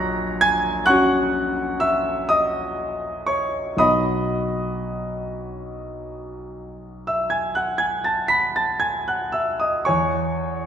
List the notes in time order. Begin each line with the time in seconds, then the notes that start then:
Already playing: A#1 F#3 C#5 D#5 A#5 C#6 D#6 F#6 A#6
0.41 G#5 G#6
0.86 C#4 F#5 C#6 F#6
0.90 F#4
1.80 E5 E6
2.29 D#5 D#6
3.27 C#5 C#6
3.77 B1 F#3 B3 F#4 D#5 B5 D#6
7.07 E5 E6
7.30 G#5 G#6
7.55 F#5 F#6
7.78 G#5 G#6
8.04 A5 A6
8.28 B5 B6
8.56 A5 A6
8.80 G#5 G#6
9.08 F#5 F#6
9.32 E5 E6
9.60 D#5 D#6
9.85 E2 C#5 G#5 C#6